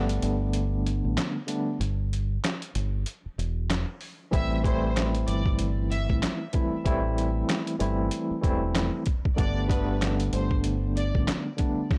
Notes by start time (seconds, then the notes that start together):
Already playing: G1 D3 G3 A3 B3 D4
0.09 closed hi-hat
0.22 G1, closed hi-hat
0.53 closed hi-hat
0.87 closed hi-hat
1.05 A1
1.18 snare, clap, closed hi-hat
1.47 D3 G3 A3 B3 D4, closed hi-hat
1.80 G1, closed hi-hat
2.13 closed hi-hat
2.44 snare, clap, closed hi-hat
2.62 closed hi-hat
2.75 G1, closed hi-hat
3.06 closed hi-hat
3.26 muted fingered electric bass stroke
3.38 E1, closed hi-hat
3.70 snare, clap, closed hi-hat
4.01 open hi-hat
4.31 A1 E3 G3 A3 C4 E4 E5, kick, closed hi-hat
4.63 E3 G3 A3 C4 E4 C5, kick, closed hi-hat
4.97 snare, clap, closed hi-hat
5.15 closed hi-hat
5.27 G1 D5, closed hi-hat
5.46 kick
5.59 closed hi-hat
5.91 E5, closed hi-hat
6.10 A1, kick
6.23 snare, clap, closed hi-hat
6.53 E3 G3 A3 C4 E4, kick, closed hi-hat
6.84 A1 E3 G3 A3 C4 E4, kick, closed hi-hat
7.18 closed hi-hat
7.49 snare, clap, closed hi-hat
7.67 closed hi-hat
7.79 G1 E3 G3 A3 C4 E4, closed hi-hat
8.11 closed hi-hat
8.31 muted fingered electric bass stroke
8.41 E1 E3 G3 A3 C4 E4, kick, closed hi-hat
8.75 snare, clap, closed hi-hat
9.06 kick, closed hi-hat
9.25 kick
9.36 G1 D3 G3 A3 B3 D4 D5, kick, closed hi-hat
9.68 D3 G3 A3 B3 D4 B4, kick, closed hi-hat
10.02 snare, clap, closed hi-hat
10.20 closed hi-hat
10.33 G1 C5, closed hi-hat
10.51 kick
10.64 closed hi-hat
10.97 D5, closed hi-hat
11.15 A1, kick
11.28 snare, clap, closed hi-hat
11.57 D3 G3 A3 B3 D4, kick, closed hi-hat
11.91 kick, snare